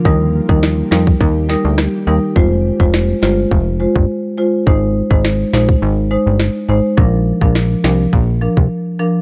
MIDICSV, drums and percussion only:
0, 0, Header, 1, 2, 480
1, 0, Start_track
1, 0, Tempo, 576923
1, 44, Time_signature, 4, 2, 24, 8
1, 7669, End_track
2, 0, Start_track
2, 0, Title_t, "Drums"
2, 44, Note_on_c, 9, 36, 116
2, 44, Note_on_c, 9, 42, 80
2, 127, Note_off_c, 9, 36, 0
2, 128, Note_off_c, 9, 42, 0
2, 409, Note_on_c, 9, 36, 98
2, 492, Note_off_c, 9, 36, 0
2, 522, Note_on_c, 9, 42, 80
2, 524, Note_on_c, 9, 38, 113
2, 605, Note_off_c, 9, 42, 0
2, 608, Note_off_c, 9, 38, 0
2, 765, Note_on_c, 9, 38, 110
2, 848, Note_off_c, 9, 38, 0
2, 891, Note_on_c, 9, 36, 93
2, 975, Note_off_c, 9, 36, 0
2, 1004, Note_on_c, 9, 36, 92
2, 1004, Note_on_c, 9, 42, 69
2, 1087, Note_off_c, 9, 36, 0
2, 1087, Note_off_c, 9, 42, 0
2, 1243, Note_on_c, 9, 38, 66
2, 1327, Note_off_c, 9, 38, 0
2, 1481, Note_on_c, 9, 37, 96
2, 1481, Note_on_c, 9, 38, 116
2, 1484, Note_on_c, 9, 42, 85
2, 1564, Note_off_c, 9, 37, 0
2, 1564, Note_off_c, 9, 38, 0
2, 1567, Note_off_c, 9, 42, 0
2, 1964, Note_on_c, 9, 36, 110
2, 2047, Note_off_c, 9, 36, 0
2, 2329, Note_on_c, 9, 36, 90
2, 2412, Note_off_c, 9, 36, 0
2, 2444, Note_on_c, 9, 38, 108
2, 2527, Note_off_c, 9, 38, 0
2, 2685, Note_on_c, 9, 38, 107
2, 2768, Note_off_c, 9, 38, 0
2, 2924, Note_on_c, 9, 36, 87
2, 3007, Note_off_c, 9, 36, 0
2, 3291, Note_on_c, 9, 36, 89
2, 3374, Note_off_c, 9, 36, 0
2, 3884, Note_on_c, 9, 36, 116
2, 3967, Note_off_c, 9, 36, 0
2, 4249, Note_on_c, 9, 36, 92
2, 4332, Note_off_c, 9, 36, 0
2, 4365, Note_on_c, 9, 38, 99
2, 4448, Note_off_c, 9, 38, 0
2, 4606, Note_on_c, 9, 38, 107
2, 4689, Note_off_c, 9, 38, 0
2, 4732, Note_on_c, 9, 36, 92
2, 4815, Note_off_c, 9, 36, 0
2, 5321, Note_on_c, 9, 38, 110
2, 5405, Note_off_c, 9, 38, 0
2, 5804, Note_on_c, 9, 36, 120
2, 5887, Note_off_c, 9, 36, 0
2, 6169, Note_on_c, 9, 36, 89
2, 6252, Note_off_c, 9, 36, 0
2, 6285, Note_on_c, 9, 38, 105
2, 6368, Note_off_c, 9, 38, 0
2, 6526, Note_on_c, 9, 38, 104
2, 6609, Note_off_c, 9, 38, 0
2, 6764, Note_on_c, 9, 36, 87
2, 6847, Note_off_c, 9, 36, 0
2, 7131, Note_on_c, 9, 36, 87
2, 7214, Note_off_c, 9, 36, 0
2, 7669, End_track
0, 0, End_of_file